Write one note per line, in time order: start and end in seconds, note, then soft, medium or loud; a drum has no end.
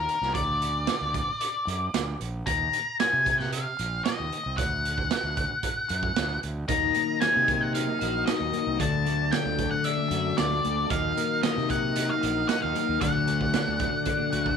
0.00 0.34 A#4 medium
0.09 closed hi-hat medium
0.21 0.32 C2 medium
0.21 snare soft
0.34 0.87 D2 loud
0.34 2.16 D5 medium
0.34 kick medium
0.34 closed hi-hat medium
0.62 closed hi-hat medium
0.87 snare loud
0.87 closed hi-hat medium
1.01 1.22 D2 medium
1.14 kick medium
1.14 closed hi-hat medium
1.41 closed hi-hat medium
1.67 1.88 F#2 loud
1.67 closed hi-hat medium
1.94 2.14 D2 medium
1.94 snare loud
1.94 closed hi-hat medium
2.20 2.41 A#1 medium
2.20 closed hi-hat medium
2.46 2.68 D#2 loud
2.46 2.96 A#5 medium
2.46 kick loud
2.46 closed hi-hat medium
2.73 closed hi-hat medium
3.00 3.41 G#5 loud
3.00 snare loud
3.00 closed hi-hat medium
3.13 3.65 C3 medium
3.26 kick medium
3.26 closed hi-hat medium
3.38 3.51 F#5 medium
3.38 snare soft
3.52 4.04 F5 medium
3.52 closed hi-hat medium
3.79 4.00 A#1 medium
3.79 closed hi-hat medium
4.05 4.57 D#5 medium
4.05 snare loud
4.05 closed hi-hat medium
4.20 4.30 D#2 medium
4.32 closed hi-hat medium
4.46 4.56 C2 medium
4.57 5.10 D2 loud
4.57 6.39 F#5 medium
4.57 kick loud
4.57 closed hi-hat medium
4.85 closed hi-hat medium
4.98 kick medium
5.11 snare loud
5.11 closed hi-hat medium
5.24 5.44 D2 medium
5.37 kick medium
5.37 closed hi-hat medium
5.63 kick medium
5.63 closed hi-hat medium
5.89 6.11 F#2 medium
5.89 closed hi-hat medium
6.03 kick medium
6.16 6.37 D2 medium
6.16 snare loud
6.16 closed hi-hat medium
6.43 6.64 D2 medium
6.43 closed hi-hat medium
6.67 6.90 D#2 medium
6.67 7.20 D#3 medium
6.67 14.57 F#3 medium
6.67 8.78 A#3 medium
6.67 8.78 D#4 medium
6.67 8.78 A#4 medium
6.67 8.77 D#5 medium
6.67 7.18 A#5 loud
6.67 kick loud
6.67 closed hi-hat medium
6.67 low conga medium
6.94 7.47 A#3 medium
6.94 closed hi-hat medium
7.21 8.54 D#3 medium
7.21 7.62 G#5 loud
7.21 snare loud
7.21 closed hi-hat medium
7.36 7.87 C3 medium
7.36 high conga medium
7.48 8.52 A#3 medium
7.48 kick medium
7.48 closed hi-hat medium
7.48 low conga medium
7.61 7.74 F#5 medium
7.74 8.25 D#4 medium
7.74 8.26 F5 loud
7.74 closed hi-hat medium
7.87 high conga medium
8.01 8.22 A#1 medium
8.01 10.11 F#4 medium
8.01 closed hi-hat medium
8.26 8.80 D#4 medium
8.26 8.81 D#5 medium
8.26 snare loud
8.26 closed hi-hat medium
8.40 8.51 D#2 medium
8.40 high conga medium
8.53 8.80 A#3 medium
8.53 closed hi-hat medium
8.53 low conga medium
8.67 8.77 C2 medium
8.79 9.32 D2 loud
8.79 9.31 D3 medium
8.79 10.90 A3 medium
8.79 10.90 D4 medium
8.79 10.90 A4 medium
8.79 10.90 D5 medium
8.79 9.35 A5 medium
8.79 kick medium
8.79 closed hi-hat medium
8.79 low conga medium
9.06 9.57 A3 medium
9.06 closed hi-hat medium
9.32 10.64 D3 medium
9.32 9.69 G5 medium
9.32 snare loud
9.32 closed hi-hat medium
9.45 9.66 D2 medium
9.45 snare soft
9.45 high conga medium
9.59 10.63 A3 medium
9.59 kick medium
9.59 closed hi-hat medium
9.59 low conga medium
9.71 9.85 F#5 medium
9.84 10.36 D4 medium
9.84 10.38 E5 medium
9.84 closed hi-hat medium
9.97 high conga medium
10.11 10.32 F#2 medium
10.11 12.22 F#4 medium
10.11 closed hi-hat medium
10.38 10.59 D2 medium
10.38 10.91 D4 medium
10.38 10.87 D5 medium
10.38 snare loud
10.38 closed hi-hat medium
10.51 high conga medium
10.63 10.85 D2 medium
10.63 10.91 A3 medium
10.63 closed hi-hat medium
10.63 low conga medium
10.90 11.11 D#2 loud
10.90 11.43 D#3 medium
10.90 12.99 A#3 medium
10.90 12.99 D#4 medium
10.90 12.99 A#4 medium
10.90 12.99 D#5 medium
10.90 11.42 F5 medium
10.90 kick loud
10.90 closed hi-hat medium
10.90 low conga medium
11.17 11.69 A#3 medium
11.17 closed hi-hat medium
11.43 12.75 D#3 medium
11.43 11.70 D#5 medium
11.43 snare loud
11.43 closed hi-hat medium
11.56 12.09 C3 medium
11.56 snare soft
11.56 high conga medium
11.69 12.74 A#3 medium
11.69 12.10 F#5 medium
11.69 kick medium
11.69 closed hi-hat medium
11.69 low conga medium
11.96 12.48 D#4 medium
11.96 closed hi-hat medium
12.09 12.48 F5 medium
12.09 high conga medium
12.23 12.43 A#1 medium
12.23 13.01 F#4 medium
12.23 closed hi-hat medium
12.49 13.01 D#4 medium
12.49 12.62 F#5 medium
12.49 snare loud
12.49 closed hi-hat medium
12.62 12.73 D#2 medium
12.62 12.98 F5 medium
12.62 high conga medium
12.75 13.01 A#3 medium
12.75 closed hi-hat medium
12.75 low conga medium
12.89 12.99 D#2 loud
13.00 13.53 D2 loud
13.00 13.53 D3 medium
13.00 14.57 A3 medium
13.00 14.57 D4 medium
13.00 14.57 A4 medium
13.00 14.57 D5 medium
13.00 14.55 F#5 medium
13.00 kick loud
13.00 closed hi-hat medium
13.00 low conga medium
13.28 13.79 A3 medium
13.28 closed hi-hat medium
13.28 low conga medium
13.41 kick medium
13.54 14.57 D3 medium
13.54 snare loud
13.54 closed hi-hat medium
13.67 13.88 D2 medium
13.67 high conga medium
13.80 14.57 A3 medium
13.80 kick medium
13.80 closed hi-hat medium
13.80 low conga medium
14.05 14.57 D4 medium
14.05 kick medium
14.05 closed hi-hat medium
14.05 high conga medium
14.19 high conga medium
14.33 14.56 D2 medium
14.33 14.57 F#4 medium
14.33 closed hi-hat medium
14.46 kick medium